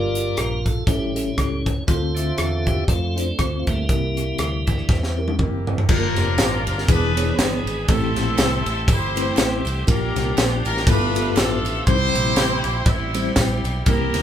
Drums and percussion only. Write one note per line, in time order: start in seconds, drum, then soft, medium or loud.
0.15 closed hi-hat medium
0.37 cross-stick loud
0.37 closed hi-hat medium
0.66 kick medium
0.66 closed hi-hat medium
0.87 kick loud
0.87 closed hi-hat loud
1.16 closed hi-hat medium
1.38 kick medium
1.38 cross-stick loud
1.38 closed hi-hat medium
1.66 kick medium
1.66 closed hi-hat medium
1.88 kick loud
1.88 closed hi-hat medium
2.17 cross-stick soft
2.17 closed hi-hat medium
2.38 cross-stick loud
2.38 closed hi-hat medium
2.67 kick medium
2.67 closed hi-hat medium
2.88 kick loud
2.88 closed hi-hat medium
3.18 closed hi-hat medium
3.39 kick medium
3.39 cross-stick loud
3.39 closed hi-hat medium
3.67 kick medium
3.67 closed hi-hat medium
3.89 kick loud
3.89 closed hi-hat medium
4.17 cross-stick soft
4.17 closed hi-hat medium
4.38 cross-stick loud
4.38 closed hi-hat medium
4.67 kick medium
4.67 closed hi-hat medium
4.78 cross-stick soft
4.89 kick loud
4.89 snare medium
5.03 snare medium
5.28 high tom medium
5.39 kick medium
5.39 mid tom medium
5.67 floor tom medium
5.78 floor tom medium
5.89 kick loud
5.89 crash loud
5.89 tambourine medium
6.16 snare soft
6.16 ride medium
6.16 tambourine medium
6.38 snare loud
6.38 clap medium
6.38 ride medium
6.38 tambourine medium
6.67 ride medium
6.67 tambourine soft
6.78 snare soft
6.89 kick loud
6.89 ride medium
6.89 tambourine medium
7.17 ride medium
7.17 tambourine medium
7.39 snare loud
7.39 clap loud
7.39 ride medium
7.39 tambourine loud
7.67 ride soft
7.67 tambourine medium
7.88 kick loud
7.88 ride medium
7.88 tambourine medium
8.16 snare soft
8.16 ride medium
8.16 tambourine medium
8.38 snare loud
8.38 clap medium
8.38 ride medium
8.38 tambourine medium
8.66 ride medium
8.66 tambourine medium
8.88 kick loud
8.88 ride medium
8.88 tambourine medium
9.16 ride medium
9.16 tambourine medium
9.37 snare loud
9.37 clap loud
9.37 ride medium
9.37 tambourine loud
9.65 ride medium
9.65 tambourine medium
9.87 kick loud
9.87 ride medium
9.87 tambourine medium
10.16 snare soft
10.16 ride medium
10.16 tambourine medium
10.38 snare loud
10.38 clap medium
10.38 ride medium
10.38 tambourine medium
10.65 ride soft
10.65 tambourine medium
10.77 snare soft
10.87 kick loud
10.87 ride medium
10.87 tambourine medium
11.15 ride medium
11.15 tambourine medium
11.37 snare loud
11.37 clap loud
11.37 ride medium
11.37 tambourine loud
11.65 ride medium
11.65 tambourine medium
11.86 kick loud
11.86 ride medium
11.86 tambourine medium
12.15 ride medium
12.15 tambourine medium
12.36 snare loud
12.36 clap loud
12.36 ride medium
12.36 tambourine medium
12.64 ride medium
12.64 tambourine soft
12.86 kick loud
12.86 ride medium
12.86 tambourine medium
13.14 ride medium
13.14 tambourine medium
13.36 kick medium
13.36 snare loud
13.36 clap loud
13.36 ride medium
13.36 tambourine loud
13.64 ride soft
13.64 tambourine medium
13.86 kick loud
13.86 ride medium
13.86 tambourine medium
14.14 snare soft
14.14 ride medium
14.14 tambourine medium